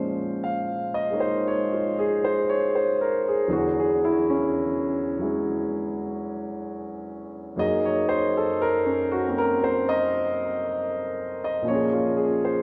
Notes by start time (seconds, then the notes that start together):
Already playing: A#2 F3 G#3 C#4 C5
0.44 F5
0.94 D#5
1.11 G#3 A#3 D#4 C#5
1.20 C5
1.48 C#5
1.73 F4
1.99 G#4
2.24 C5
2.49 C#5
2.75 C5
3.01 A#4
3.28 G#4
3.48 E2 D3 E3 F#3 G#4
3.53 F#4
3.79 G#4
4.05 E4
4.30 C#4
5.19 F#3 G#3 E4 G#4
7.56 F#2 F#3 A#3 D#4 G#4 D#5
7.85 C#5
8.09 C5
8.37 A4
8.62 A#4
8.86 C#4
9.12 F#4
9.27 A#3 C4 F#4 A#4
9.38 A#4
9.64 C5
9.89 D#5
11.44 D#5
11.62 A#2 F3
11.68 A#3 C#4 C#5
11.73 G#4
11.93 F4
12.17 G#4
12.45 C5